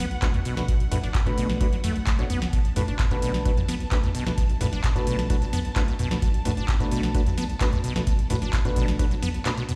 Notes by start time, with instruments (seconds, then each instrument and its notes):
Already playing: sub bass B1, string section F#5
0.11 closed hi-hat
0.22 sub bass B1, synth stab A3 D4 F#4 B4, acid bass B3, kick, clap, closed hi-hat
0.34 acid bass B2, closed hi-hat, mid tom
0.45 sub bass B1, acid bass B2, open hi-hat
0.57 synth stab A3 D4 F#4 B4, snare, closed hi-hat
0.68 sub bass B1, acid bass B2, kick, closed hi-hat
0.80 closed hi-hat
0.91 acid bass A2, synth stab A3 D4 F#4 B4, snare, mid tom, open hi-hat
1.03 sub bass F#1, acid bass D4, snare, closed hi-hat
1.15 acid bass B2, kick, clap, closed hi-hat
1.26 acid bass B2, synth stab A3 D4 F#4 B4, kick, closed hi-hat
1.38 sub bass B1, acid bass B2, open hi-hat
1.50 snare, closed hi-hat
1.61 acid bass F#3, synth stab A3 D4 F#4 B4, kick, closed hi-hat
1.73 sub bass B1, acid bass F#3, closed hi-hat
1.84 acid bass A3, snare, mid tom, open hi-hat
1.96 closed hi-hat
2.07 sub bass B1, acid bass A3, kick, clap, closed hi-hat
2.19 acid bass B2, synth stab A3 D4 F#4 C#5, closed hi-hat
2.30 sub bass B1, acid bass B3, mid tom, open hi-hat
2.42 snare, closed hi-hat
2.53 sub bass B1, acid bass B2, string section A5, kick, closed hi-hat
2.65 closed hi-hat
2.76 acid bass A2, synth stab A3 D4 F#4 B4, snare, mid tom, open hi-hat
2.88 sub bass F#1, acid bass D4, closed hi-hat
2.99 acid bass B2, kick, clap, closed hi-hat
3.11 acid bass B2, synth stab A3 D4 F#4 B4, kick, closed hi-hat
3.22 sub bass B1, acid bass B2, open hi-hat
3.34 snare, closed hi-hat
3.45 acid bass F#3, synth stab A3 D4 F#4 B4, kick, closed hi-hat
3.57 sub bass B1, acid bass F#3, closed hi-hat, mid tom
3.68 acid bass B3, snare, open hi-hat
3.80 closed hi-hat
3.92 sub bass B1, synth stab A3 D4 F#4 B4, acid bass B3, kick, clap, closed hi-hat
4.03 acid bass B2, closed hi-hat, mid tom
4.15 sub bass B1, acid bass B2, open hi-hat
4.26 synth stab A3 D4 F#4 B4, snare, closed hi-hat
4.38 sub bass B1, acid bass B2, kick, closed hi-hat
4.50 closed hi-hat
4.61 acid bass A2, synth stab A3 D4 F#4 B4, snare, mid tom, open hi-hat
4.72 sub bass F#1, acid bass D4, snare, closed hi-hat
4.84 acid bass B2, kick, clap, closed hi-hat
4.96 acid bass B2, synth stab A3 D4 F#4 B4, kick, closed hi-hat
5.07 sub bass B1, acid bass B2, open hi-hat
5.19 snare, closed hi-hat
5.30 acid bass F#3, synth stab A3 D4 F#4 B4, kick, closed hi-hat
5.42 sub bass B1, acid bass F#3, closed hi-hat
5.53 acid bass B3, snare, mid tom, open hi-hat
5.65 closed hi-hat
5.76 sub bass B1, synth stab A3 D4 F#4 B4, acid bass B3, kick, clap, closed hi-hat
5.88 acid bass B2, closed hi-hat
5.99 sub bass B1, acid bass B2, mid tom, open hi-hat
6.11 synth stab A3 D4 F#4 B4, snare, closed hi-hat
6.22 sub bass B1, acid bass B2, kick, closed hi-hat
6.34 closed hi-hat
6.45 acid bass A2, synth stab A3 D4 F#4 B4, snare, mid tom, open hi-hat
6.57 sub bass F#1, acid bass D4, closed hi-hat
6.68 acid bass B2, kick, clap, closed hi-hat
6.80 acid bass B2, synth stab A3 D4 F#4 B4, kick, closed hi-hat
6.91 sub bass B1, acid bass B2, open hi-hat
7.03 snare, closed hi-hat
7.15 acid bass F#3, synth stab A3 D4 F#4 B4, kick, closed hi-hat
7.26 sub bass B1, acid bass F#3, closed hi-hat, mid tom
7.38 acid bass B3, snare, open hi-hat
7.50 closed hi-hat
7.61 sub bass B1, synth stab A3 D4 F#4 B4, acid bass B3, kick, clap, closed hi-hat
7.73 acid bass B2, closed hi-hat, mid tom
7.84 sub bass B1, acid bass B2, open hi-hat
7.96 synth stab A3 D4 F#4 B4, snare, closed hi-hat
8.07 sub bass B1, acid bass B2, kick, closed hi-hat
8.19 closed hi-hat
8.30 acid bass A2, synth stab A3 D4 F#4 B4, snare, mid tom, open hi-hat
8.42 sub bass F#1, acid bass D4, snare, closed hi-hat
8.53 acid bass B2, kick, clap, closed hi-hat
8.65 acid bass B2, synth stab A3 D4 F#4 B4, kick, closed hi-hat
8.76 sub bass B1, acid bass B2, kick, open hi-hat
8.88 snare, closed hi-hat
8.99 acid bass F#3, synth stab A3 D4 F#4 B4, kick, closed hi-hat
9.11 sub bass B1, acid bass F#3, closed hi-hat
9.22 acid bass B3, snare, mid tom, open hi-hat
9.34 closed hi-hat
9.45 acid bass B2, synth stab A3 D4 F#4 B4, clap, closed hi-hat
9.57 acid bass B2, closed hi-hat
9.69 acid bass B2, mid tom, open hi-hat